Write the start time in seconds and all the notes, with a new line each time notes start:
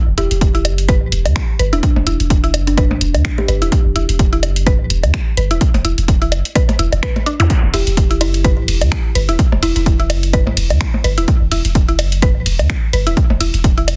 0.07 E1
0.18 E1 E4 G4, closed hi-hat
0.31 E1, closed hi-hat
0.41 kick, closed hi-hat
0.55 E4, closed hi-hat
0.65 F#1, closed hi-hat, low woodblock
0.78 closed hi-hat
0.89 B4, kick, closed hi-hat
1.02 B1
1.12 E1, closed hi-hat
1.26 E2, closed hi-hat, low woodblock
1.36 finger snap, kick, closed hi-hat
1.59 G1 B4, closed hi-hat
1.73 D1 D4 E4, closed hi-hat
1.83 kick, closed hi-hat
1.96 E1, percussion blips
2.07 E1 E4, closed hi-hat
2.20 E1, closed hi-hat
2.30 kick, closed hi-hat
2.44 E4, closed hi-hat
2.54 F#1, closed hi-hat, low woodblock
2.67 D4, closed hi-hat
2.77 B4, kick, closed hi-hat, low woodblock
2.91 B1, percussion blips
3.01 E1, closed hi-hat
3.14 E2, closed hi-hat, low woodblock
3.25 finger snap, kick, closed hi-hat
3.38 G4, percussion blips
3.48 G1 B4, closed hi-hat, low woodblock
3.62 D1 E4, closed hi-hat
3.72 kick, closed hi-hat
3.85 E1
3.96 E1 E4, closed hi-hat
4.09 E1, closed hi-hat
4.19 kick, closed hi-hat
4.33 E4, closed hi-hat
4.43 F#1, closed hi-hat, low woodblock
4.56 closed hi-hat
4.67 B4, kick, closed hi-hat
4.80 B1
4.90 E1, closed hi-hat
5.03 E2, closed hi-hat, low woodblock
5.14 finger snap, kick, closed hi-hat
5.37 G1 B4, closed hi-hat
5.51 D1 E4, closed hi-hat
5.61 kick, closed hi-hat
5.74 E1, closed hi-hat, percussion blips
5.85 E1 E4, closed hi-hat
5.98 E1, closed hi-hat
6.08 kick, closed hi-hat
6.22 E4, closed hi-hat
6.32 F#1, closed hi-hat, low woodblock
6.45 closed hi-hat
6.55 B4, kick, closed hi-hat, low woodblock
6.69 closed hi-hat, percussion blips
6.79 E1 E4, closed hi-hat
6.92 E1, closed hi-hat, low woodblock
7.03 B4, finger snap, kick, closed hi-hat
7.16 closed hi-hat, percussion blips
7.26 D4, closed hi-hat, low woodblock
7.40 E2 E4, closed hi-hat, zap
7.50 kick, closed hi-hat
7.63 E1
7.74 E1 E4 G4, closed hi-hat, ride
7.87 E1, closed hi-hat
7.97 kick, closed hi-hat
8.11 E4, closed hi-hat
8.21 F#1 E4, closed hi-hat, ride, low woodblock
8.34 closed hi-hat
8.44 B4, kick, closed hi-hat
8.58 B1
8.68 E1, closed hi-hat, ride
8.81 E2, closed hi-hat, low woodblock
8.92 finger snap, kick, closed hi-hat
9.15 G1 B4, closed hi-hat, ride
9.29 D1 E4, closed hi-hat
9.39 kick, closed hi-hat
9.52 E1, percussion blips
9.63 E1 E4, closed hi-hat, ride
9.76 E1 E4, closed hi-hat
9.86 kick, closed hi-hat
10.00 E4, closed hi-hat
10.10 F#1, closed hi-hat, ride, low woodblock
10.23 closed hi-hat
10.33 B4, kick, closed hi-hat, low woodblock
10.47 B1, percussion blips
10.57 E1, closed hi-hat, ride
10.70 E2, closed hi-hat, low woodblock
10.81 finger snap, kick, closed hi-hat
10.94 percussion blips
11.04 G1 B4, closed hi-hat, ride, low woodblock
11.18 D1 E4, closed hi-hat
11.28 kick, closed hi-hat
11.41 E1
11.52 E1 E4, closed hi-hat, ride
11.65 E1, closed hi-hat
11.75 kick, closed hi-hat
11.88 E4, closed hi-hat
11.99 F#1, closed hi-hat, ride, low woodblock
12.12 closed hi-hat
12.22 B4, kick, closed hi-hat
12.36 B1
12.46 E1, closed hi-hat, ride
12.59 E2, closed hi-hat, low woodblock
12.70 finger snap, kick, closed hi-hat
12.93 G1 B4, closed hi-hat, ride
13.07 D1 E4, closed hi-hat
13.17 kick, closed hi-hat
13.30 E1, percussion blips
13.40 E1 E4, closed hi-hat, ride
13.54 E1, closed hi-hat
13.64 kick, closed hi-hat
13.78 E4, closed hi-hat
13.88 F#1, closed hi-hat, ride, low woodblock